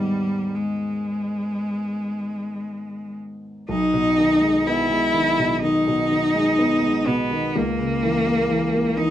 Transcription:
Already playing: grand piano G#2 D#3 G#3 B3, cello G3
0.55 cello G#3
3.69 grand piano B1, cello D#4
3.94 grand piano B2
4.18 grand piano D#3
4.41 grand piano G#3
4.66 grand piano B3, cello E4
4.90 grand piano G#3
5.14 grand piano D#3
5.39 grand piano B2
5.63 grand piano D#3, cello D#4
5.87 grand piano B2
6.11 grand piano D#3
6.35 grand piano G#3
6.59 grand piano B3
6.82 grand piano G#3
7.07 grand piano B2, cello B3
7.31 grand piano D#3
7.56 grand piano C#2, cello A#3
7.79 grand piano C#3
8.03 grand piano E3
8.27 grand piano A#3
8.50 grand piano E3
8.74 grand piano A#3
8.97 grand piano E3, cello D#4

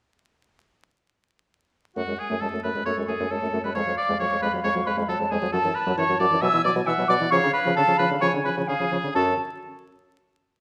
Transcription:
1.96 bassoon F#2, french horn A3, oboe F#4, flute F#5
2.08 bassoon F#2, french horn G#3
2.19 oboe G#4, flute G#5
2.30 bassoon F#2, french horn A3
2.41 bassoon F#2, french horn G#3, oboe A4, flute A5
2.53 bassoon F#2, french horn A3
2.63 bassoon F#2, french horn A3, oboe B4, flute B5
2.75 bassoon F#2, french horn G#3
2.85 bassoon F#2, french horn A3, clarinet A4, oboe C#5, flute C#6
2.97 bassoon F#2, french horn G#3
3.08 bassoon F#2, french horn A3, oboe G#4, flute G#5
3.20 bassoon F#2, french horn A3
3.31 bassoon F#2, french horn G#3, oboe A4, clarinet C#5, flute A5
3.42 bassoon F#2, french horn A3
3.53 bassoon F#2, french horn A3
3.64 bassoon F#2, french horn G#3, oboe B4, flute B5
3.75 bassoon F2, french horn G#3, oboe C#5, clarinet F5, flute C#6
3.87 bassoon F2, french horn F#3
3.97 oboe D5, flute D6
4.09 bassoon F2, french horn G#3
4.19 bassoon F2, french horn F#3, oboe C#5, flute C#6
4.31 bassoon F2, french horn G#3
4.41 bassoon F2, french horn G#3, oboe B4, flute B5
4.53 bassoon F2, french horn F#3
4.64 bassoon F2, french horn G#3, oboe C#5, flute C#6
4.75 bassoon F2, french horn F#3
4.86 bassoon F2, french horn G#3, oboe B4, flute B5
4.97 bassoon F2, french horn G#3
5.09 bassoon F2, french horn F#3, oboe A4, clarinet C#5, flute A5
5.20 bassoon F2, french horn G#3
5.31 bassoon F2, french horn G#3, oboe G#4, flute G#5
5.42 bassoon F2, french horn F#3
5.52 bassoon F#2, french horn F#3, oboe A4, flute A5, clarinet A5
5.64 bassoon F#2, french horn E3
5.75 oboe B4, flute B5
5.86 bassoon F#2, french horn F#3
5.97 bassoon F#2, french horn E3, oboe C#5, flute C#6
6.09 bassoon F#2, french horn F#3
6.19 bassoon F#2, french horn F#3, oboe D5, flute D6
6.31 bassoon F#2, french horn E3
6.42 bassoon B2, french horn F#3, oboe E5, clarinet G#5, flute E6
6.53 bassoon B2, french horn E3
6.64 bassoon B2, french horn F#3, oboe D5, flute D6
6.76 bassoon B2, french horn F#3
6.86 bassoon B2, french horn E3, oboe E5, clarinet F#5, flute E6
6.98 bassoon B2, french horn F#3
7.08 bassoon B2, french horn F#3, oboe D5, flute D6
7.20 bassoon B2, french horn E3
7.31 bassoon C#3, french horn F3, oboe C#5, clarinet F5, flute C#6
7.43 bassoon C#3, french horn D3
7.53 oboe B4, flute B5
7.65 bassoon C#3, french horn F3
7.76 bassoon C#3, french horn D3, oboe A4, flute A5
7.87 bassoon C#3, french horn F3
7.98 bassoon C#3, french horn F3, oboe B4, flute B5
8.11 bassoon C#3, french horn D3
8.21 bassoon C#3, french horn F3, oboe C#5, clarinet G#5, flute C#6
8.34 bassoon C#3, french horn D3
8.44 bassoon C#3, french horn F3, oboe B4, flute B5
8.57 bassoon C#3, french horn F3
8.68 bassoon C#3, french horn D3, oboe G#4, clarinet F5, flute G#5
8.80 bassoon C#3, french horn F3
8.91 bassoon C#3, french horn F3
9.03 bassoon C#3, french horn D3
9.15 bassoon F#2, french horn C#4, clarinet F#4, oboe A4, flute A5

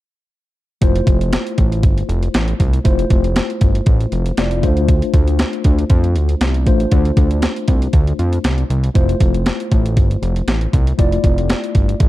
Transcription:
0.81 analog synth bass F1, tine electric piano A3 E4 F4 C5, kick, closed hi-hat
0.96 closed hi-hat
1.07 analog synth bass F1, kick, closed hi-hat
1.21 closed hi-hat
1.33 snare, closed hi-hat
1.47 closed hi-hat
1.58 analog synth bass A1, kick, closed hi-hat
1.72 closed hi-hat
1.83 analog synth bass G1, kick, closed hi-hat
1.98 closed hi-hat
2.09 analog synth bass F1, closed hi-hat
2.23 closed hi-hat
2.34 analog synth bass A1, snare, closed hi-hat
2.48 closed hi-hat
2.60 analog synth bass C2, kick, closed hi-hat
2.73 closed hi-hat
2.84 analog synth bass F1, tine electric piano A3 E4 F4 C5, kick, closed hi-hat
2.99 closed hi-hat
3.10 analog synth bass F1, kick, closed hi-hat
3.24 closed hi-hat
3.36 snare, closed hi-hat
3.50 closed hi-hat
3.61 analog synth bass G1, kick, closed hi-hat
3.75 closed hi-hat
3.86 analog synth bass A1, kick, closed hi-hat
4.01 closed hi-hat
4.12 analog synth bass F1, closed hi-hat
4.26 closed hi-hat
4.37 analog synth bass F1, tine electric piano A3 E4 F4 D5, snare, closed hi-hat
4.51 closed hi-hat
4.62 analog synth bass D2, tine electric piano A3 D4 F4 C5, kick, closed hi-hat
4.77 closed hi-hat
4.88 kick, closed hi-hat
5.02 closed hi-hat
5.14 analog synth bass D2, kick, closed hi-hat
5.28 closed hi-hat
5.39 snare, closed hi-hat
5.53 closed hi-hat
5.64 analog synth bass D2, kick, closed hi-hat
5.79 closed hi-hat
5.90 analog synth bass F2, kick, closed hi-hat
6.04 closed hi-hat
6.16 analog synth bass D2, closed hi-hat
6.29 closed hi-hat
6.41 analog synth bass C2, snare, closed hi-hat
6.54 closed hi-hat
6.66 analog synth bass A1, tine electric piano A3 D4 F4 C5, kick, closed hi-hat
6.80 closed hi-hat
6.92 analog synth bass D2, kick, closed hi-hat
7.05 closed hi-hat
7.17 analog synth bass D2, kick, closed hi-hat
7.31 closed hi-hat
7.42 snare, closed hi-hat
7.56 closed hi-hat
7.68 analog synth bass C2, kick, closed hi-hat
7.82 closed hi-hat
7.93 analog synth bass D2, kick, closed hi-hat
8.07 closed hi-hat
8.19 analog synth bass F2, closed hi-hat
8.33 closed hi-hat
8.44 analog synth bass C2, snare, closed hi-hat
8.58 closed hi-hat
8.70 analog synth bass C2, closed hi-hat
8.84 closed hi-hat
8.94 analog synth bass F1, tine electric piano A3 E4 F4 C5, kick, closed hi-hat
9.09 closed hi-hat
9.20 analog synth bass F1, kick, closed hi-hat
9.34 closed hi-hat
9.46 snare, closed hi-hat
9.60 closed hi-hat
9.71 analog synth bass A1, kick, closed hi-hat
9.86 closed hi-hat
9.97 analog synth bass G1, kick, closed hi-hat
10.11 closed hi-hat
10.22 analog synth bass F1, closed hi-hat
10.36 closed hi-hat
10.48 analog synth bass A1, snare, closed hi-hat
10.61 closed hi-hat
10.73 analog synth bass C2, kick, closed hi-hat
10.87 closed hi-hat
10.98 analog synth bass F1, tine electric piano A3 E4 F4 D5, kick, closed hi-hat
11.12 closed hi-hat
11.24 analog synth bass F1, kick, closed hi-hat
11.38 closed hi-hat
11.50 snare, closed hi-hat
11.64 closed hi-hat
11.75 analog synth bass G1, kick, closed hi-hat
11.89 closed hi-hat
12.00 analog synth bass A1, kick, closed hi-hat

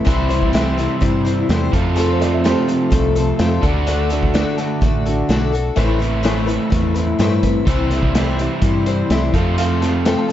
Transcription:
0.05 fingered electric bass C2, twelve-string acoustic guitar C3 E3 G3 C4 E4 C5, kick, closed hi-hat
0.29 twelve-string acoustic guitar G3 C4 E4 C5, closed hi-hat
0.43 kick
0.53 twelve-string acoustic guitar C3 E3 G3 C4 E4 C5, snare, closed hi-hat
0.78 twelve-string acoustic guitar G3 C4 E4 C5, snare, closed hi-hat
1.00 fingered electric bass G2, twelve-string acoustic guitar G3 C4 E4 C5, kick, closed hi-hat
1.25 twelve-string acoustic guitar G3 C4 E4 C5, closed hi-hat
1.49 fingered electric bass E2, twelve-string acoustic guitar C3 E3 G3 C4 E4 C5, snare, closed hi-hat
1.72 overdriven electric guitar F2 C3 F3 A3, fingered electric bass F2, twelve-string acoustic guitar F4 A4, kick, closed hi-hat
1.76 twelve-string acoustic guitar C4
1.95 twelve-string acoustic guitar F3 A3 C4 F4 A4, upright piano G#4, closed hi-hat
2.00 upright piano A4
2.10 upright piano C5
2.20 twelve-string acoustic guitar C4 F4 A4, upright piano D5, snare, closed hi-hat
2.33 upright piano E5
2.44 twelve-string acoustic guitar F3 A3 C4 F4 A4, upright piano G4 C5, snare, closed hi-hat
2.68 twelve-string acoustic guitar C4 F4 A4, closed hi-hat
2.91 fingered electric bass C2, twelve-string acoustic guitar A3 C4 F4 A4, kick, closed hi-hat
3.15 twelve-string acoustic guitar C4 F4 A4, closed hi-hat
3.39 fingered electric bass F2, twelve-string acoustic guitar F3 A3 C4 F4 A4, snare, closed hi-hat
3.62 fingered electric bass D2, overdriven electric guitar D3 A3, twelve-string acoustic guitar F#4 A4, kick, closed hi-hat
3.66 twelve-string acoustic guitar D4
3.87 twelve-string acoustic guitar D3 A3 D4 F#4 A4, closed hi-hat
4.09 twelve-string acoustic guitar D4 F#4 A4, closed hi-hat
4.23 kick
4.34 twelve-string acoustic guitar D3 A3 D4 F#4 A4, snare, closed hi-hat
4.58 twelve-string acoustic guitar D4 F#4 A4, snare, closed hi-hat
4.81 fingered electric bass A1, twelve-string acoustic guitar A3 D4 F#4 A4, kick, closed hi-hat
5.06 twelve-string acoustic guitar D4 F#4 A4, closed hi-hat
5.29 fingered electric bass B1, twelve-string acoustic guitar D3 A3 D4 F#4 A4, snare, closed hi-hat
5.52 twelve-string acoustic guitar D4 F#4 A4, closed hi-hat
5.76 fingered electric bass A1, twelve-string acoustic guitar A2 E3 A3 C4 E4 B4, kick, closed hi-hat
5.99 twelve-string acoustic guitar A3 C4 E4 B4, closed hi-hat
6.23 twelve-string acoustic guitar A2 E3 A3 C4 E4 B4, snare, closed hi-hat
6.46 twelve-string acoustic guitar A3 C4 E4 B4, closed hi-hat
6.70 fingered electric bass E2, twelve-string acoustic guitar A3 C4 E4 B4, kick, closed hi-hat
6.94 twelve-string acoustic guitar A3 C4 E4 B4, closed hi-hat
7.19 fingered electric bass G2, twelve-string acoustic guitar A2 E3 A3 C4 E4 B4, snare, closed hi-hat
7.43 twelve-string acoustic guitar A3 C4 E4 B4, kick, closed hi-hat
7.67 fingered electric bass C2, twelve-string acoustic guitar C3 E3 G3 C4 E4 C5, kick, closed hi-hat
7.90 twelve-string acoustic guitar G3 C4 E4 C5, snare, closed hi-hat
8.03 kick
8.15 twelve-string acoustic guitar C3 E3 G3 C4 E4 C5, snare, closed hi-hat
8.38 twelve-string acoustic guitar G3 C4 E4 C5, closed hi-hat
8.62 fingered electric bass G2, twelve-string acoustic guitar G3 C4 E4 C5, kick, closed hi-hat
8.86 twelve-string acoustic guitar G3 C4 E4 C5, closed hi-hat
9.10 fingered electric bass C2, twelve-string acoustic guitar C3 E3 G3 C4 E4 C5, snare, closed hi-hat
9.33 overdriven electric guitar F2 C3 F3 A3, fingered electric bass F2, twelve-string acoustic guitar F4 A4, kick, closed hi-hat
9.38 twelve-string acoustic guitar C4
9.58 twelve-string acoustic guitar F3 A3 C4 F4 A4, upright piano F5, closed hi-hat
9.82 twelve-string acoustic guitar C4 F4 A4, snare, closed hi-hat
10.05 twelve-string acoustic guitar F3 A3 C4 F4 A4, upright piano G5, snare, closed hi-hat
10.18 upright piano A5
10.28 twelve-string acoustic guitar A4

